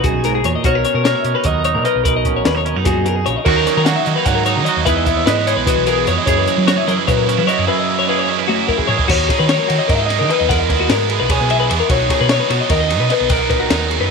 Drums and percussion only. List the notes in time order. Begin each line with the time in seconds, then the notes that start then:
0.04 kick, closed hi-hat
0.24 snare, closed hi-hat
0.44 closed hi-hat
0.64 kick, closed hi-hat
0.85 closed hi-hat
1.05 snare, closed hi-hat
1.24 closed hi-hat
1.44 kick, closed hi-hat
1.64 closed hi-hat
1.85 closed hi-hat
2.05 kick, closed hi-hat
2.25 kick, closed hi-hat
2.45 snare, closed hi-hat
2.66 closed hi-hat
2.85 kick, snare, closed hi-hat
3.06 closed hi-hat
3.26 closed hi-hat
3.46 kick, crash
3.67 snare, closed hi-hat
3.86 snare, closed hi-hat
4.06 closed hi-hat
4.26 kick, snare, closed hi-hat
4.46 closed hi-hat
4.66 closed hi-hat
4.86 kick, closed hi-hat
5.06 kick, closed hi-hat
5.27 snare, closed hi-hat
5.47 closed hi-hat
5.67 kick, closed hi-hat
5.87 closed hi-hat
6.07 closed hi-hat
6.27 kick, closed hi-hat
6.47 closed hi-hat
6.68 snare, closed hi-hat
6.88 closed hi-hat
7.08 kick, closed hi-hat
7.29 closed hi-hat
7.49 closed hi-hat
8.49 high tom
8.69 kick
8.79 kick
8.89 floor tom
8.99 kick
9.09 kick, crash
9.29 kick, snare, ride
9.49 snare, ride
9.70 ride
9.89 kick, ride
10.10 snare, ride
10.30 ride
10.50 kick, ride
10.70 kick, snare, ride
10.90 snare, ride
11.10 ride
11.30 kick, ride
11.50 ride
11.71 ride
11.90 kick, ride
12.10 kick, snare, ride
12.29 snare, ride
12.50 snare, ride
12.70 kick, ride
12.90 snare, ride
13.10 snare, ride
13.30 kick, ride
13.50 kick, ride
13.70 snare, ride
13.91 ride